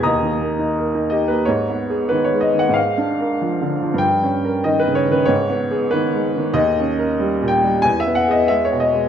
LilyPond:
<<
  \new Staff \with { instrumentName = "Upright piano" } { \time 2/4 \key gis \minor \tempo 4 = 93 <dis'' ais'' dis'''>4 r8 dis''16 b'16 | cis''4 b'16 cis''16 dis''16 fis''16 | eis''4 r4 | g''4 dis''16 b'16 cis''16 b'16 |
cis''4 b'4 | dis''4. g''8 | gis''16 e''16 fis''16 dis''16 e''16 cis''16 dis''8 | }
  \new Staff \with { instrumentName = "Upright piano" } { \clef bass \time 2/4 \key gis \minor dis,16 dis16 ais16 dis'16 ais'16 dis'16 g'16 ais16 | \tuplet 3/2 { gis,8 b8 gis'8 dis8 gis8 dis8 } | \tuplet 3/2 { gis,8 d'8 ais'8 eis8 d8 eis8 } | \tuplet 3/2 { g,8 cis'8 ais'8 dis8 cis8 dis8 } |
\tuplet 3/2 { gis,8 b8 gis'8 dis8 gis8 dis8 } | \tuplet 3/2 { dis,8 cis'8 ais'8 g8 ais,8 g8 } | \tuplet 3/2 { e,8 b8 gis'8 gis8 b,8 gis8 } | }
>>